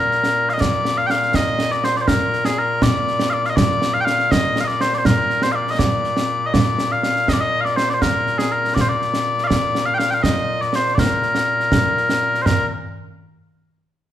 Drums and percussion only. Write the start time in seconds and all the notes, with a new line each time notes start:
0.11 snare
0.24 snare
0.49 snare
0.61 concert bass drum, snare
0.85 snare
1.10 snare
1.22 snare
1.34 concert bass drum, snare
1.59 snare
1.71 snare
1.84 snare
1.96 snare
2.08 concert bass drum, snare
2.33 snare
2.45 snare
2.82 concert bass drum, snare
3.07 snare
3.19 snare
3.44 snare
3.57 concert bass drum, snare
3.82 snare
4.07 snare
4.19 snare
4.32 concert bass drum, snare
4.56 snare
4.69 snare
4.81 snare
4.93 snare
5.05 concert bass drum, snare
5.30 snare
5.42 snare
5.67 snare
5.79 concert bass drum, snare
6.04 snare
6.17 snare
6.54 concert bass drum, snare
6.78 snare
7.03 snare
7.16 snare
7.28 concert bass drum, snare
7.65 snare
7.77 snare
7.90 snare
8.02 concert bass drum, snare
8.27 snare
8.39 snare
8.64 snare
8.76 concert bass drum, snare
9.02 snare
9.14 snare
9.38 snare
9.50 concert bass drum, snare
9.75 snare
9.99 snare
10.12 snare
10.24 concert bass drum, snare
10.61 snare
10.73 snare
10.85 snare
10.98 concert bass drum, snare
11.23 snare
11.35 snare
11.60 snare
11.72 concert bass drum, snare
11.97 snare
12.09 snare
12.34 snare
12.46 snare, mid tom